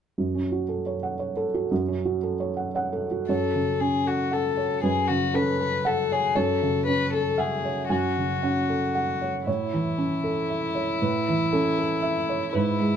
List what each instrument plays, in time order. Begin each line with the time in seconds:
0.18 felt piano F#2
0.35 felt piano C#4
0.52 felt piano F#4
0.69 felt piano A4
0.86 felt piano C#5
1.03 felt piano F#5
1.19 felt piano C#5
1.37 felt piano A4
1.54 felt piano F#4
1.71 felt piano F#2
1.88 felt piano C#4
2.05 felt piano F#4
2.23 felt piano A4
2.40 felt piano C#5
2.57 felt piano F#5
2.75 felt piano C#5 F#5
2.93 felt piano A4
3.11 felt piano F#4
3.29 felt piano F#2 C#5, violin A4
3.54 felt piano C#3
3.80 felt piano C#4, violin G#4
4.05 violin F#4, felt piano A4
4.31 violin A4, felt piano F#5
4.57 felt piano C#5
4.83 felt piano F#2 B4, violin G#4
5.07 felt piano C#3, violin F#4
5.34 felt piano C#4 A4, violin B4
5.60 felt piano A4
5.85 violin A4, felt piano F#5
6.12 violin G#4, felt piano C#5
6.35 felt piano F#2 C#5, violin A4
6.62 felt piano C#3
6.86 felt piano C#4, violin B4
7.13 violin A4, felt piano A4
7.38 violin G#4, felt piano E5 F#5
7.65 felt piano C#5
7.89 felt piano F#2 G#5, violin F#4
8.17 felt piano C#3
8.43 felt piano C#4 F#5
8.69 felt piano A4
8.95 felt piano F#5
9.21 felt piano C#5
9.47 felt piano A2 C#5, violin E4
9.73 felt piano E3
9.98 felt piano C#4
10.24 felt piano A4
10.50 felt piano E5
10.75 felt piano C#5
11.02 felt piano A2 B4
11.28 felt piano E3
11.53 felt piano C#4 A4
11.79 felt piano A4
12.02 felt piano E5
12.29 felt piano C#5
12.53 felt piano G#2 B4, violin E4
12.80 felt piano G#3